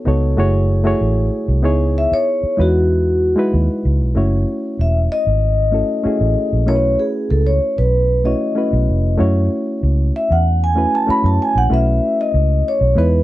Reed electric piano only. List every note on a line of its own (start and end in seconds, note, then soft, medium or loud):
0.00 0.05 B3 medium
0.00 0.06 D#4 medium
0.00 0.07 F#4 medium
0.00 0.07 A4 medium
0.00 0.08 C#5 medium
0.05 0.38 B3 medium
0.05 0.38 D#4 medium
0.05 0.37 F#4 medium
0.05 0.39 A4 medium
0.05 0.39 C#5 medium
0.37 0.80 A3 medium
0.37 0.80 E4 medium
0.37 0.80 F#4 medium
0.37 0.81 G#4 medium
0.37 0.81 C#5 loud
0.84 1.55 A3 medium
0.84 1.55 E4 medium
0.84 1.55 F#4 medium
0.84 1.56 G#4 medium
0.84 1.56 C#5 loud
1.62 2.47 B3 medium
1.62 2.48 D#4 medium
1.62 2.48 E4 medium
1.62 2.48 G#4 medium
1.62 2.49 C#5 loud
2.57 3.28 G#3 medium
2.57 3.28 D#4 medium
2.57 3.29 E4 medium
2.57 3.29 F#4 medium
2.57 3.29 B4 medium
3.36 4.07 G#3 medium
3.36 4.07 D#4 medium
3.36 4.08 E4 medium
3.36 4.08 F#4 medium
3.36 4.08 B4 loud
4.15 5.28 A3 medium
4.15 5.28 C#4 medium
4.15 5.28 E4 medium
4.15 5.29 F#4 medium
4.15 5.29 C#5 medium
5.71 6.01 A3 medium
5.71 6.01 C#4 medium
5.71 6.01 E4 medium
5.71 6.02 F#4 medium
5.71 6.02 A4 medium
6.03 6.60 A3 medium
6.03 6.61 C#4 medium
6.03 6.61 E4 medium
6.03 6.61 F#4 medium
6.03 6.62 G#4 medium
6.66 7.79 A3 medium
6.66 7.79 C#4 medium
6.66 7.80 E4 medium
6.66 7.80 F#4 medium
6.66 6.75 A#4 medium
6.75 7.84 B4 medium
8.24 8.53 A3 medium
8.24 8.53 C#4 medium
8.24 8.53 E4 medium
8.24 8.54 F#4 medium
8.24 8.54 C#5 medium
8.55 9.12 A3 medium
8.55 9.12 C#4 medium
8.55 9.12 E4 medium
8.55 9.13 F#4 medium
8.55 9.13 B4 medium
9.18 10.30 A3 medium
9.18 10.31 C#4 medium
9.18 10.31 E4 medium
9.18 10.31 F#4 medium
9.18 10.32 C#5 medium
10.75 11.04 A3 medium
10.75 11.04 C#4 medium
10.75 11.05 E4 medium
10.75 11.05 F#4 medium
10.75 11.05 B4 medium
11.07 11.63 A3 medium
11.07 11.64 C#4 medium
11.07 11.64 E4 medium
11.07 11.64 F#4 medium
11.07 11.65 C#5 medium
11.69 12.82 A3 medium
11.69 12.82 C#4 medium
11.69 12.83 E4 medium
11.69 12.83 F#4 medium
11.69 12.83 B4 medium
12.95 13.23 G#3 medium
12.95 13.23 B3 medium
12.95 13.23 D#4 medium
12.95 13.23 E4 medium
12.95 13.23 B4 medium